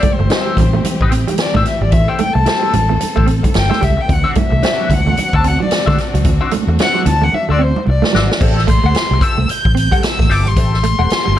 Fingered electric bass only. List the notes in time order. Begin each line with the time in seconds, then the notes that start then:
0.20 G1
0.57 A1
0.84 muted fingered electric bass stroke
1.01 A1
1.55 A2
1.81 G#1
1.92 A1
2.35 C2
2.74 A1
3.02 muted fingered electric bass stroke
3.17 A1
3.56 G1
3.83 C#2
4.09 D2
4.52 C2
4.90 D2
5.18 muted fingered electric bass stroke
5.33 D2
5.87 D3
6.14 C#2
6.25 D2
6.67 E2
7.06 D2
7.33 muted fingered electric bass stroke
7.49 D2
7.87 C2
8.14 G#1
8.40 A1
8.84 D2
8.95 muted fingered electric bass stroke
9.11 C2
9.38 C2
9.65 A1
10.19 A1
10.29 G1
10.46 G#1
10.57 A1
10.99 E1
11.11 muted fingered electric bass stroke
11.28 G1